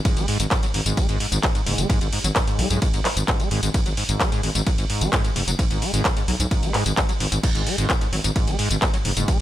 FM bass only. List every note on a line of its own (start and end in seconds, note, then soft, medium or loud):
0.17 0.24 G#1 medium
0.40 0.47 G#1 medium
0.74 0.81 G#1 medium
0.86 0.93 G#1 medium
1.09 1.16 G#1 medium
1.32 1.39 G#1 medium
1.66 1.74 F#1 loud
1.78 1.85 F#1 medium
2.01 2.08 G#1 medium
2.24 2.31 G#1 medium
2.59 2.66 B1 medium
2.70 2.77 B1 medium
2.94 3.01 G#1 medium
3.17 3.24 G#1 medium
3.51 3.58 G#1 loud
3.63 3.70 G#1 medium
3.86 3.93 G#1 medium
4.09 4.16 G#1 medium
4.43 4.51 G#1 medium
4.55 4.62 G#1 medium
4.78 4.85 G#1 medium
5.01 5.08 G#1 medium
5.36 5.43 F#1 medium
5.47 5.54 F#1 medium
5.71 5.77 G#1 medium
5.93 6.00 G#1 medium
6.28 6.35 B1 medium
6.40 6.47 B1 medium
6.63 6.70 G#1 medium
6.86 6.93 G#1 medium
7.20 7.27 G#1 medium
7.32 7.39 G#1 medium
7.55 7.62 G#1 medium
7.78 7.85 G#1 medium
8.13 8.20 G#1 loud
8.24 8.31 G#1 medium
8.47 8.54 G#1 medium
8.70 8.77 G#1 medium
9.05 9.12 F#1 loud
9.17 9.24 F#1 medium